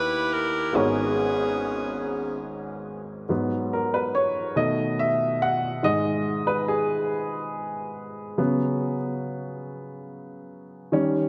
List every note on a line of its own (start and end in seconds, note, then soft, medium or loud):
0.00 0.71 D#2 medium
0.00 0.71 D#3 medium
0.00 0.70 B3 medium
0.00 0.71 E4 medium
0.00 0.72 E4 medium
0.00 0.72 G4 medium
0.00 0.34 B4 loud
0.00 0.72 C#5 medium
0.00 0.71 D#5 medium
0.34 0.76 A#4 medium
0.73 3.25 G#1 medium
0.73 3.26 G#2 medium
0.73 3.24 B3 medium
0.73 2.41 B3 medium
0.73 2.41 C#4 medium
0.73 3.25 F#4 medium
0.73 2.45 G#4 medium
0.73 3.26 G#4 medium
0.73 3.26 A#4 medium
0.77 3.27 C#5 medium
3.29 3.86 G#2 soft
3.29 3.86 F#3 soft
3.29 3.86 B3 medium
3.73 3.94 A#4 medium
3.94 4.15 B4 medium
4.15 4.58 C#5 medium
4.56 5.13 B2 soft
4.56 5.13 D#3 soft
4.56 5.13 A3 medium
4.56 5.00 D#5 medium
4.99 5.43 E5 medium
5.42 5.81 F#5 medium
5.83 6.40 G#2 medium
5.83 6.40 D#3 soft
5.83 6.41 G#3 medium
5.83 6.50 D#5 medium
6.47 6.69 B4 medium
6.68 8.77 G#4 medium
8.38 8.95 C#3 medium
8.38 8.95 F#3 soft
8.38 8.95 B3 medium
10.92 11.29 D#3 medium
10.92 11.29 G3 soft
10.92 11.29 C#4 medium